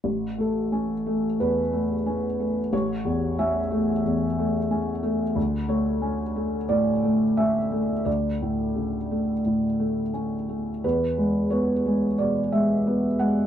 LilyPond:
<<
  \new Staff \with { instrumentName = "Felt piano" } { \time 4/4 \key a \major \tempo 4 = 89 r8 a'4. b'2 | cis''4 e''2~ e''8 r8 | r8 cis''4. d''4 e''4 | d''2. r4 |
b'4 cis''4 d''8 e''4 fis''8 | }
  \new Staff \with { instrumentName = "Felt piano" } { \time 4/4 \key a \major a,,8 a8 cis'8 a8 e,8 a8 cis'8 a8 | a,,8 e,8 cis'8 a8 e,8 a8 cis'8 a8 | d,8 a8 cis'8 a8 a,8 a8 cis'8 a8 | d,8 a,8 cis8 a8 a,8 a8 cis'8 a8 |
e,8 gis8 b8 gis8 b,8 gis8 b8 gis8 | }
>>